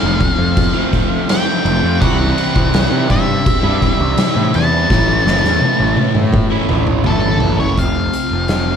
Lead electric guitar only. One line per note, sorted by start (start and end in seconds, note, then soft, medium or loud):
0.00 1.29 F5 loud
1.30 2.01 G5 loud
2.01 3.11 F#5 loud
3.11 4.58 E5 loud
4.56 7.02 A5 loud
7.06 7.56 A4 medium
7.60 7.78 C#5 medium
7.79 8.76 F5 medium